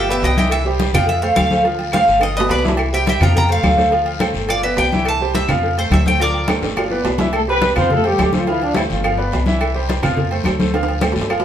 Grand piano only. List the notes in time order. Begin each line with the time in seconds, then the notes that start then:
0.09 B3 B4 D5
0.37 E3 E4 E5
0.65 G3 G4 C5
0.94 F3 F4 F5
1.23 A3 A4 C5
1.51 A3 A4 C5
1.64 F3 F4 F5
1.95 A3 A4 C5
2.22 F3 F4 F5
2.37 B3 B4 D5
2.64 E3 E4 E5
2.93 G3 G4 C5
3.22 F3 F4 F5
3.50 A3 A4 C5
3.77 A3 A4 C5
3.91 F3 F4 F5
4.20 A3 A4 C5
4.50 F3 F4 F5
4.64 B3 B4 D5
4.93 E3 E4 E5
5.21 G3 G4 C5
5.50 F3 F4 F5
5.78 A3 A4 C5
6.06 A3 A4 C5
6.20 F3 F4 F5
6.49 A3 A4 C5
6.77 F3 F4 F5
6.91 B3 B4 D5
7.20 E3 E4 E5
7.48 G3 G4 C5
7.76 F3 F4 F5
8.04 A3 A4 C5
8.34 A3 A4 C5
8.48 F3 F4 F5
8.76 A3 A4 C5
9.04 F3 F4 F5
9.18 B3 B4 D5
9.47 E3 E4 E5
9.75 G3 G4 C5
10.03 F3 F4 F5
10.32 A3 A4 C5
10.60 A3 A4 C5
10.74 F3 F4 F5
11.03 A3 A4 C5
11.30 F3 F4 F5